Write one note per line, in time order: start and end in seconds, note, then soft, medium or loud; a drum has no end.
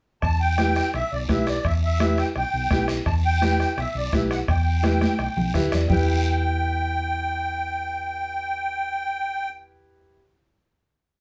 0.22 0.80 E2 medium
0.22 0.39 A5 medium
0.22 bombo low medium
0.22 bombo rim medium
0.22 high conga soft
0.22 long guiro medium
0.41 0.90 G5 medium
0.58 0.83 E4 medium
0.58 0.83 G4 medium
0.58 0.84 B4 medium
0.58 bombo rim medium
0.58 high conga medium
0.58 short guiro medium
0.76 bombo rim medium
0.76 short guiro medium
0.93 1.01 B1 medium
0.93 1.11 E5 medium
0.93 bombo rim medium
0.93 high conga soft
0.93 long guiro medium
1.12 1.26 B1 medium
1.12 1.20 D5 medium
1.28 1.58 B1 medium
1.28 1.54 E4 medium
1.28 1.54 G4 medium
1.28 1.54 B4 medium
1.28 1.47 E5 medium
1.28 bombo low medium
1.28 bombo rim medium
1.28 high conga medium
1.28 short guiro medium
1.47 1.64 D5 medium
1.47 bombo rim medium
1.47 short guiro medium
1.64 2.21 E2 medium
1.64 1.74 E5 medium
1.64 bombo low medium
1.64 bombo rim medium
1.64 high conga soft
1.64 long guiro medium
1.84 2.19 E5 medium
2.00 2.25 E4 medium
2.00 2.25 G4 medium
2.00 2.25 B4 medium
2.00 bombo rim medium
2.00 high conga medium
2.00 short guiro medium
2.18 2.27 G5 medium
2.18 bombo rim medium
2.18 short guiro medium
2.36 2.43 B1 medium
2.36 2.85 G5 medium
2.36 bombo rim medium
2.36 high conga soft
2.36 long guiro medium
2.54 2.68 B1 medium
2.70 2.99 B1 medium
2.70 2.96 E4 medium
2.70 2.96 G4 medium
2.70 2.96 B4 medium
2.70 bombo low medium
2.70 bombo rim medium
2.70 high conga medium
2.70 short guiro medium
2.88 bombo rim medium
2.88 short guiro medium
3.06 3.63 E2 loud
3.06 3.14 A5 medium
3.06 bombo low medium
3.06 bombo rim medium
3.06 high conga soft
3.06 long guiro medium
3.25 3.79 G5 loud
3.42 3.66 E4 medium
3.42 3.67 G4 medium
3.42 3.67 B4 medium
3.42 bombo rim medium
3.42 high conga medium
3.42 short guiro medium
3.60 bombo rim medium
3.60 short guiro medium
3.78 3.84 B1 medium
3.78 3.96 E5 medium
3.78 bombo rim medium
3.78 high conga soft
3.78 long guiro medium
3.95 4.09 B1 medium
3.95 4.12 D5 medium
4.13 4.41 B1 medium
4.13 4.38 E4 medium
4.13 4.38 G4 medium
4.13 4.38 B4 medium
4.13 4.22 E5 medium
4.13 bombo low medium
4.13 bombo rim medium
4.13 high conga medium
4.13 short guiro medium
4.31 4.39 F#5 medium
4.31 bombo rim medium
4.31 short guiro medium
4.48 5.05 E2 loud
4.48 5.51 G5 medium
4.48 bombo low medium
4.48 bombo rim medium
4.48 high conga soft
4.48 long guiro medium
4.83 5.08 E4 medium
4.83 5.08 G4 medium
4.83 5.09 B4 medium
4.83 bombo rim medium
4.83 high conga medium
4.83 short guiro medium
5.01 bombo rim medium
5.01 high conga medium
5.01 short guiro medium
5.19 5.26 B1 medium
5.19 bombo rim medium
5.19 long guiro medium
5.37 5.51 B1 loud
5.37 5.53 G5 medium
5.37 low conga medium
5.54 5.70 D2 medium
5.54 5.79 E4 medium
5.54 5.79 G4 medium
5.54 5.80 B4 medium
5.54 5.71 E5 medium
5.54 bombo low medium
5.54 bombo rim medium
5.54 low conga medium
5.54 short guiro medium
5.72 5.88 E2 medium
5.72 5.89 D5 medium
5.72 bombo rim medium
5.72 low conga medium
5.72 short guiro medium
5.88 10.19 E2 medium
5.88 10.18 E4 medium
5.88 10.19 G4 medium
5.88 10.20 B4 medium
5.88 9.49 G5 medium
5.88 bombo low medium
5.88 low conga loud
5.88 long guiro loud